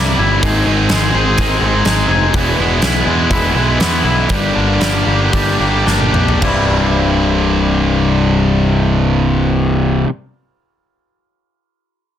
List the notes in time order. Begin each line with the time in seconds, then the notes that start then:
Already playing: C2 G2 C3 G3 E4
0.19 G1 E4
0.41 G#1 G#2 D#3 G#3 C4 D#4 G#4, kick, open hi-hat
0.66 G#1 D#3 G#3 C4 D#4 G#4
0.89 G#1 G#3 C4 D#4, snare, open hi-hat
0.94 G#4
1.14 G#1 G#3 C4 D#4 G#4
1.38 G#1 G#2 D#3 G#3 C4 D#4 G#4, kick, open hi-hat
1.61 G#1 D#4 G#4
1.66 G#3 C4
1.85 G#1 G#3 C4 D#4, snare, open hi-hat
1.89 G#4
2.09 F1 G#4
2.34 E1 E2 B2 E3 G#3 B3, kick, open hi-hat
2.38 E4
2.58 E1 B2 B3 E4
2.62 E3 G#3
2.82 B1 E3 G#3 B3, snare, open hi-hat
2.86 E4
3.06 E2 E3 G#3 B3 E4
3.30 E1 E2 B2 E3 G#3 B3 E4, kick, open hi-hat
3.55 B1 E3 G#3 B3 E4
3.78 E2 E3 G#3 B3 E4, snare, open hi-hat
4.04 B1 E4
4.29 G1 G2 D3 G3 A#3 D4 G4, kick, open hi-hat
4.53 G1 D3 G3 A#3 D4 G4
4.80 G1 G3 A#3 D4 G4, snare, open hi-hat
5.06 G1 G3 A#3 D4 G4
5.32 G1 G2 D3 G3 A#3 D4 G4, kick, open hi-hat
5.58 G1 G3 A#3 D4 G4
5.85 G1 G3 A#3 D4 G4, snare
6.00 high tom
6.13 A#1 G4, mid tom
6.28 floor tom
6.39 C1 C2 G2, kick, crash
6.43 C3 G3 E4